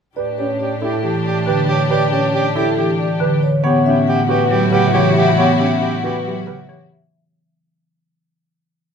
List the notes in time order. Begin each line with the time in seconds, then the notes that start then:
0.16 A2 D4 G4 B4 D5
0.37 C#4 G4 C#5
0.60 G4 D5
0.81 E4 G4 A4
1.03 E3 G4
1.25 G4 D5
1.46 D3 G4 B4
1.68 G4 C#5
1.90 G4 B4 D5
2.12 C#4 G4 C#5
2.33 G4 D5
2.55 E4 G4 A4
2.77 E3 G4
2.99 G4 D5
3.20 D3 G4 B4
3.43 C#5
3.63 A2 B3 E4 F#4 G4 C#5 F#5
3.86 C#4 G4 E5
4.07 G4 F#5
4.29 F#4 G4 B4
4.50 F#3 G4
4.72 C#3 G4 B4 F#5
4.94 E3 G4 C#5
5.16 G4 E5
5.37 B3 G4 C#5 F#5
5.59 C#4 G4 E5
5.81 G4 F#5
6.03 F#4 G4 B4
6.25 F#3 G4
6.47 C#3 G4 B4 F#5
6.68 E3 G4 C#5
6.92 E5